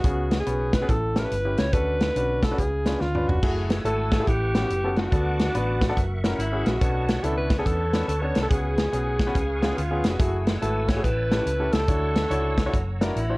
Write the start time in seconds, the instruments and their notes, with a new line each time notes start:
Already playing: alto saxophone F#4
0.04 fingered electric bass C#2, grand piano C#3 B3 C#4 F#4 G#4, kick, closed hi-hat
0.31 snare, closed hi-hat
0.40 alto saxophone G#4
0.46 fingered electric bass B1, grand piano B3 C#4 F#4 B4, closed hi-hat
0.73 alto saxophone B4, kick, snare, closed hi-hat
0.81 grand piano B3 C#4 F#4 G#4
0.89 fingered electric bass A1, grand piano A2, alto saxophone A4, kick, closed hi-hat
1.16 grand piano C#4 E4 G4 A4, alto saxophone A#4, snare, closed hi-hat
1.25 alto saxophone B4
1.31 fingered electric bass G1, closed hi-hat
1.45 grand piano C#4 E4 G4 B4
1.58 fingered electric bass C#2, alto saxophone C#5, snare, closed hi-hat
1.73 fingered electric bass D2, grand piano D3 C#4 D4 F#4 A4, alto saxophone B4, kick, closed hi-hat
2.00 snare, closed hi-hat
2.16 fingered electric bass B1, grand piano C#4 D4 F#4 B4, closed hi-hat
2.42 alto saxophone A4, kick, snare, closed hi-hat
2.51 grand piano C#4 D4 F#4 B4
2.58 fingered electric bass C#2, grand piano C#3, alto saxophone G#4, kick, closed hi-hat
2.85 grand piano C#4 D4 F4 B4, snare, closed hi-hat
3.00 fingered electric bass D2, alto saxophone F4, snare
3.15 grand piano C#4 D4 F4 B4, mid tom
3.28 fingered electric bass F1, alto saxophone F#4, floor tom
3.43 fingered electric bass F#1, tonewheel organ A3 F#5 G#5 E6, grand piano A3 E4 F#4 G#4, kick, crash
3.70 snare, closed hi-hat
3.85 fingered electric bass G#1, grand piano A3 E4 F#4 A4, alto saxophone A4, closed hi-hat
4.12 alto saxophone A4, kick, snare, closed hi-hat
4.20 grand piano A3 E4 F#4 G#4
4.28 fingered electric bass A1, grand piano A2, alto saxophone G4, tonewheel organ B4 G5 C#6, kick, closed hi-hat
4.55 grand piano B3 C#4 F#4 G4, snare, closed hi-hat
4.70 fingered electric bass F#1, closed hi-hat
4.84 grand piano B3 C#4 F#4 A4
4.96 alto saxophone F#4, snare, closed hi-hat
5.11 fingered electric bass D2, grand piano D3 B3 D4 F#4 A4, tonewheel organ B4 A5 D6, kick, closed hi-hat
5.39 snare, closed hi-hat
5.55 fingered electric bass A1, grand piano B3 D4 F#4 B4, closed hi-hat
5.81 kick, snare, closed hi-hat
5.89 grand piano B3 D4 F#4 A4
5.96 fingered electric bass F#1, tonewheel organ A#4 E5 C#6, kick, closed hi-hat
6.24 grand piano C#4 E4 F#4 A#4, snare, closed hi-hat
6.38 fingered electric bass G#1, alto saxophone E4, closed hi-hat
6.52 grand piano C#4 E4 F#4 G#4
6.66 fingered electric bass A#1, alto saxophone F#4, snare, closed hi-hat
6.81 fingered electric bass B1, grand piano B2 B3 C#4 D4 A4, tonewheel organ B4 C#5 A5, kick, closed hi-hat
7.08 snare, closed hi-hat
7.23 fingered electric bass C#2, grand piano B3 C#4 D4 E4, alto saxophone A4, closed hi-hat
7.38 alto saxophone B4
7.50 kick, snare, closed hi-hat
7.58 grand piano B3 C#4 D4 A4, alto saxophone G#4
7.66 fingered electric bass E2, alto saxophone A4, kick, closed hi-hat
7.93 grand piano B3 C#4 D4 B4, snare, closed hi-hat
8.08 fingered electric bass D2, alto saxophone A4, closed hi-hat
8.22 grand piano B3 C#4 D4 A4, alto saxophone C#5
8.35 fingered electric bass C2, snare, closed hi-hat
8.43 alto saxophone A4
8.49 fingered electric bass C#2, grand piano C#3 B3 C#4 F#4 G#4, alto saxophone G#4, tonewheel organ F#5 G#5, kick, closed hi-hat
8.77 snare, closed hi-hat
8.93 fingered electric bass B1, grand piano B3 C#4 F#4 G#4, closed hi-hat
9.19 kick, snare, closed hi-hat
9.27 grand piano B3 C#4 F#4 B4
9.35 fingered electric bass C#2, grand piano C#3, tonewheel organ F5, kick, closed hi-hat
9.62 grand piano B3 C#4 F4 G#4, snare, closed hi-hat
9.78 fingered electric bass D2, alto saxophone F4, closed hi-hat
9.90 grand piano B3 C#4 F4 G#4
10.03 fingered electric bass F1, alto saxophone F#4, snare, closed hi-hat
10.19 fingered electric bass F#1, grand piano A3 E4 F#4 G#4, tonewheel organ A3 F#5 E6, kick, closed hi-hat
10.46 snare, closed hi-hat
10.62 fingered electric bass G#1, grand piano A3 E4 F#4 B4, alto saxophone A4, closed hi-hat
10.88 alto saxophone C#5, kick, snare, closed hi-hat
10.96 grand piano A3 E4 F#4 G#4
11.04 fingered electric bass A1, grand piano A2, alto saxophone B4, tonewheel organ C#5 G5 A5 E6, kick, closed hi-hat
11.31 grand piano C#4 E4 G4 A4, snare, closed hi-hat
11.46 fingered electric bass C#2, closed hi-hat
11.60 grand piano C#4 E4 G4 A4
11.73 fingered electric bass C#2, alto saxophone A4, snare, closed hi-hat
11.88 fingered electric bass D2, grand piano D3 D4 E4 F#4 C#5, tonewheel organ C#5 F#5 C#6, kick, closed hi-hat
12.16 snare, closed hi-hat
12.30 fingered electric bass C#2, grand piano D4 E4 F#4 C#5, closed hi-hat
12.58 kick, snare, closed hi-hat
12.66 grand piano D4 E4 F#4 C#5
12.73 fingered electric bass F#1, tonewheel organ A#5, kick, closed hi-hat
13.01 grand piano D4 E4 F#4 A#4, snare, closed hi-hat
13.16 fingered electric bass A1, alto saxophone E4, closed hi-hat
13.29 grand piano D4 E4 F#4 C5